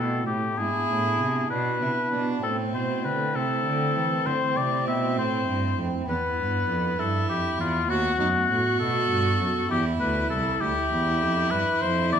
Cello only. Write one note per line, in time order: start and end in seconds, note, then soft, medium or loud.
0.00 0.28 B2 medium
0.28 0.58 A2 medium
0.59 0.67 G#2 medium
0.90 1.20 A2 medium
1.21 1.51 C3 medium
1.52 1.81 B2 medium
1.82 1.90 C3 medium
2.13 2.43 B2 medium
2.44 2.75 A2 medium
2.74 3.06 B2 medium
3.05 3.37 D3 medium
3.35 3.65 C3 medium
3.65 3.96 D3 medium
3.96 4.04 E3 medium
4.26 4.34 D3 medium
4.57 4.89 C3 medium
4.87 5.19 B2 medium
5.18 5.47 A2 medium
5.48 5.77 G2 medium
5.78 5.86 F2 medium
6.09 6.17 E2 medium
6.39 6.69 G2 medium
6.69 6.98 F2 medium
6.99 7.28 G2 medium
7.29 7.37 F2 medium
7.59 7.89 E2 medium
7.89 8.19 D#2 medium
8.19 8.49 F#2 medium
8.50 8.58 A2 medium
8.80 9.10 B2 medium
9.10 9.40 G2 medium
9.40 9.48 F#2 medium
9.71 10.01 E2 medium
10.01 10.31 D2 medium
10.32 10.61 C2 medium
10.62 10.70 D2 medium
10.92 11.23 E2 medium
11.22 11.52 F2 medium
11.52 11.60 G2 medium
11.83 12.14 F2 medium
12.13 12.20 E2 medium